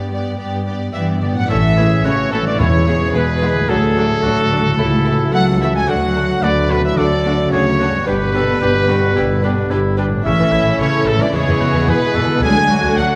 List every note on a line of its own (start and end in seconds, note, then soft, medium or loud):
0.00 0.31 G2 soft
0.00 1.43 G2 soft
0.00 1.45 B3 soft
0.00 1.47 D4 soft
0.00 1.49 G4 soft
0.11 0.38 B3 soft
0.11 0.38 G4 soft
0.11 0.38 D5 soft
0.38 0.87 G2 soft
0.38 0.66 B3 soft
0.38 0.65 G4 soft
0.38 0.65 D5 soft
0.66 0.94 B3 soft
0.66 0.93 G4 soft
0.66 0.92 D5 soft
0.93 1.43 G2 soft
0.93 1.20 E3 soft
0.93 1.22 B3 soft
0.93 1.21 G4 soft
0.93 1.20 D5 soft
0.93 1.06 E5 medium
0.93 1.02 E5 soft
1.21 1.27 D3 soft
1.21 1.49 B3 soft
1.21 1.49 G4 soft
1.21 1.49 D5 soft
1.21 1.28 D5 soft
1.32 2.53 A2 medium
1.32 1.49 F#3 soft
1.32 1.49 F#5 medium
1.37 2.55 A3 soft
1.37 1.49 F#5 medium
1.41 2.57 C#4 soft
1.46 2.55 A2 medium
1.46 2.03 E3 medium
1.46 3.65 E3 medium
1.46 2.55 A3 soft
1.46 2.54 E4 soft
1.46 1.79 A4 medium
1.46 2.03 E5 medium
1.46 2.04 E5 medium
1.50 1.98 A1 medium
1.50 1.59 A3 medium
1.50 2.55 C#4 medium
1.50 1.59 C#4 medium
1.50 1.58 E4 medium
1.50 1.58 C#5 soft
1.77 1.86 A3 soft
1.77 1.86 C#4 soft
1.77 1.86 E4 soft
1.77 2.04 G#4 medium
1.77 1.85 C#5 soft
2.03 2.53 A1 medium
2.03 2.32 C#3 medium
2.03 2.13 A3 soft
2.03 2.13 C#4 medium
2.03 2.13 E4 soft
2.03 2.60 F#4 medium
2.03 2.30 C#5 medium
2.03 2.32 C#5 medium
2.03 2.13 C#5 soft
2.31 2.45 A2 medium
2.31 2.41 A3 soft
2.31 2.41 C#4 soft
2.31 2.41 E4 soft
2.31 2.45 A4 medium
2.31 2.40 C#5 soft
2.42 2.59 D3 medium
2.42 3.62 E3 soft
2.46 3.64 G#3 soft
2.46 2.59 D5 medium
2.51 3.67 B3 soft
2.55 3.07 E2 medium
2.55 3.69 B2 medium
2.55 3.14 C#3 medium
2.55 3.69 E4 soft
2.55 2.86 E4 medium
2.55 3.69 E4 medium
2.55 3.12 C#5 medium
2.55 3.13 C#5 medium
2.60 3.38 E2 medium
2.60 3.69 G#3 medium
2.60 2.68 G#3 medium
2.60 2.68 B3 soft
2.60 2.68 E4 medium
2.60 2.68 G#4 medium
2.87 2.95 G#3 soft
2.87 2.95 B3 soft
2.87 2.95 E4 soft
2.87 4.21 G#4 medium
2.87 2.95 G#4 soft
3.12 3.62 E2 medium
3.12 3.69 B2 medium
3.12 3.23 G#3 soft
3.12 3.24 B3 medium
3.12 3.23 E4 soft
3.12 3.22 G#4 soft
3.12 3.68 B4 medium
3.12 3.67 B4 medium
3.42 3.50 G#3 soft
3.42 3.51 B3 soft
3.42 3.50 E4 soft
3.42 3.50 G#4 soft
3.52 4.72 D3 medium
3.56 4.64 A3 soft
3.61 4.76 D4 soft
3.65 4.17 D2 medium
3.65 5.29 A2 medium
3.65 4.78 D3 medium
3.65 4.78 F#3 medium
3.65 7.91 A3 medium
3.65 4.79 F#4 soft
3.65 7.91 F#4 medium
3.65 3.77 F#4 soft
3.65 5.33 A4 medium
3.65 3.77 A4 medium
3.65 5.30 A4 medium
3.70 3.78 F#3 soft
3.70 3.78 D4 soft
3.96 4.06 F#3 soft
3.96 4.06 D4 soft
3.96 4.04 F#4 soft
3.96 4.04 A4 soft
4.23 4.72 D2 medium
4.23 4.33 F#3 soft
4.23 4.33 D4 soft
4.23 4.77 F#4 medium
4.23 4.31 F#4 soft
4.23 4.31 A4 soft
4.51 4.60 F#3 soft
4.51 4.60 D4 soft
4.51 4.59 F#4 soft
4.51 4.59 A4 soft
4.61 5.81 C#3 medium
4.65 5.73 A3 soft
4.69 5.85 E4 soft
4.74 5.26 C#2 medium
4.74 5.87 C#3 medium
4.74 5.34 E4 medium
4.74 5.82 A4 soft
4.78 5.88 E3 medium
4.78 4.87 A3 soft
4.78 4.86 E4 medium
4.78 4.87 E4 medium
4.78 4.86 A4 medium
5.05 5.15 A3 soft
5.05 5.13 E4 soft
5.05 5.15 E4 soft
5.05 5.13 A4 soft
5.32 5.81 C#2 medium
5.32 5.60 F#3 medium
5.32 5.42 A3 soft
5.32 5.41 E4 soft
5.32 5.42 E4 soft
5.32 5.40 A4 soft
5.32 5.89 A4 medium
5.32 5.45 F#5 medium
5.32 5.60 F#5 medium
5.61 5.66 E3 medium
5.61 5.69 A3 soft
5.61 5.69 E4 soft
5.61 5.70 A4 soft
5.61 5.74 E5 medium
5.61 5.67 E5 soft
5.70 7.99 F#3 medium
5.74 5.88 G#3 medium
5.74 8.01 A3 soft
5.74 5.88 G#5 medium
5.79 8.03 F#4 soft
5.83 8.06 A4 soft
5.88 6.36 D2 medium
5.88 10.21 D3 medium
5.88 6.41 F#3 medium
5.88 7.89 F#3 medium
5.88 5.97 A3 soft
5.88 5.97 D4 medium
5.88 6.43 F#4 medium
5.88 5.96 F#4 medium
5.88 5.96 A4 medium
5.88 6.42 F#5 medium
5.88 6.43 F#5 medium
6.15 6.23 A3 soft
6.15 6.23 D4 soft
6.15 6.24 F#4 soft
6.15 6.24 A4 medium
6.42 6.90 D2 medium
6.42 6.69 D3 medium
6.42 6.51 A3 soft
6.42 6.51 D4 soft
6.42 6.51 F#4 soft
6.42 6.51 A4 soft
6.42 7.00 B4 medium
6.42 6.69 D5 medium
6.42 6.70 D5 medium
6.70 6.83 B2 medium
6.70 6.79 A3 soft
6.70 6.79 D4 medium
6.70 6.78 F#4 soft
6.70 6.78 A4 soft
6.70 6.83 B4 medium
6.70 6.84 B4 medium
6.84 6.97 E3 medium
6.84 6.97 E5 medium
6.97 7.45 D2 medium
6.97 7.51 D3 medium
6.97 7.06 A3 medium
6.97 7.06 D4 soft
6.97 7.06 F#4 soft
6.97 7.06 A4 medium
6.97 7.52 A4 medium
6.97 7.51 D5 medium
6.97 7.52 D5 medium
7.25 7.34 A3 soft
7.25 7.33 D4 soft
7.25 7.34 F#4 soft
7.25 7.34 A4 soft
7.51 8.00 D2 medium
7.51 8.06 C#3 medium
7.51 7.61 A3 soft
7.51 7.61 D4 soft
7.51 7.61 F#4 soft
7.51 7.65 G#4 medium
7.51 7.60 A4 soft
7.51 8.05 C#5 medium
7.51 8.06 C#5 medium
7.79 7.87 A3 medium
7.79 7.88 D4 soft
7.79 8.08 F#4 medium
7.79 7.89 F#4 medium
7.79 7.89 A4 medium
7.89 10.18 G2 soft
7.93 10.20 B3 soft
7.98 10.22 D4 soft
8.02 9.67 B2 medium
8.02 10.20 G3 medium
8.02 8.14 D4 medium
8.02 10.25 G4 soft
8.06 8.54 G1 medium
8.06 8.15 G3 medium
8.06 10.21 B3 medium
8.06 8.34 G4 medium
8.06 8.16 G4 soft
8.06 10.22 G4 medium
8.06 9.67 B4 medium
8.06 9.71 B4 medium
8.06 8.16 B4 medium
8.34 8.43 G3 soft
8.34 8.42 D4 soft
8.34 8.42 G4 soft
8.34 8.61 A4 medium
8.34 8.42 B4 medium
8.61 9.09 G1 medium
8.61 8.69 G3 soft
8.61 8.69 D4 soft
8.61 8.90 G4 medium
8.61 8.70 G4 soft
8.61 8.70 B4 soft
8.87 8.95 G3 soft
8.87 8.96 D4 soft
8.87 9.15 F#4 medium
8.87 8.97 G4 soft
8.87 8.97 B4 medium
9.16 9.64 G1 medium
9.16 9.25 G3 medium
9.16 9.24 D4 soft
9.16 9.42 E4 medium
9.16 9.24 G4 medium
9.16 9.25 B4 medium
9.43 9.51 G3 soft
9.43 9.51 D4 soft
9.43 9.72 D4 medium
9.43 9.51 G4 soft
9.43 9.51 B4 soft
9.71 10.18 G1 medium
9.71 9.80 G3 medium
9.71 9.79 D4 medium
9.71 9.98 E4 medium
9.71 9.79 G4 soft
9.71 9.79 B4 medium
9.97 10.06 G3 medium
9.97 10.06 D4 soft
9.97 10.27 D4 soft
9.97 10.05 G4 soft
9.97 10.05 B4 soft
10.07 11.27 A2 medium
10.12 11.29 A3 soft
10.16 11.32 C#4 soft
10.21 10.75 E3 medium
10.21 11.32 A3 medium
10.21 11.31 C#4 medium
10.21 11.28 E4 soft
10.21 12.38 E4 medium
10.21 11.29 A4 medium
10.21 10.75 E5 medium
10.25 10.31 A1 medium
10.25 10.31 C#3 medium
10.25 12.39 E3 medium
10.25 11.30 C#4 medium
10.25 10.54 C#4 medium
10.25 12.43 E4 medium
10.39 10.44 A1 medium
10.39 10.45 E3 soft
10.52 10.57 A1 soft
10.52 10.58 C#3 soft
10.52 11.06 E4 medium
10.65 10.71 A1 medium
10.65 10.72 C#3 medium
10.79 10.85 A1 soft
10.79 11.06 C#3 medium
10.79 10.86 E3 soft
10.79 11.06 C#5 medium
11.04 11.12 A1 medium
11.04 11.20 A2 medium
11.04 11.13 C#3 medium
11.04 11.19 A4 medium
11.04 11.20 A4 medium
11.16 11.25 A1 soft
11.16 11.33 D3 medium
11.16 12.36 E3 medium
11.20 11.27 E3 soft
11.20 12.38 G#3 soft
11.20 11.34 D5 medium
11.25 12.41 B3 soft
11.29 11.87 C#3 medium
11.29 12.43 E4 soft
11.29 12.42 G#4 medium
11.33 11.39 E2 medium
11.33 11.39 E3 medium
11.33 12.43 G#3 medium
11.33 12.43 B3 medium
11.33 12.41 B3 medium
11.33 11.63 G#4 medium
11.33 11.88 C#5 medium
11.47 11.52 E2 soft
11.47 11.53 E3 soft
11.60 11.66 E2 medium
11.60 11.67 E3 soft
11.60 11.90 F#4 medium
11.74 11.80 E2 medium
11.74 11.80 E3 medium
11.87 11.93 E2 soft
11.87 12.43 B2 medium
11.87 11.95 E3 soft
11.87 12.16 G#4 medium
11.87 12.41 B4 medium
11.87 12.43 B4 medium
12.14 12.20 E2 medium
12.14 12.22 E3 medium
12.14 12.42 A4 medium
12.25 13.15 D3 medium
12.34 13.15 D4 soft
12.38 13.15 F#3 medium
12.38 13.15 A3 medium
12.38 13.15 F#4 soft
12.38 13.15 F#4 medium
12.38 13.15 A4 medium
12.38 12.96 G#5 medium
12.42 12.48 D2 medium
12.42 12.49 D3 medium
12.42 13.15 F#3 medium
12.42 12.97 G#3 medium
12.42 13.15 D4 medium
12.42 12.69 G#4 medium
12.42 12.96 G#5 loud
12.56 12.62 D2 medium
12.56 12.63 A3 soft
12.70 12.75 D2 soft
12.70 12.76 F#3 soft
12.70 13.15 F#4 medium
12.83 12.89 D2 medium
12.83 12.90 D3 medium
12.96 13.03 D2 medium
12.96 13.15 F#3 medium
12.96 13.03 A3 soft
12.96 13.05 F#5 medium
12.96 13.15 F#5 medium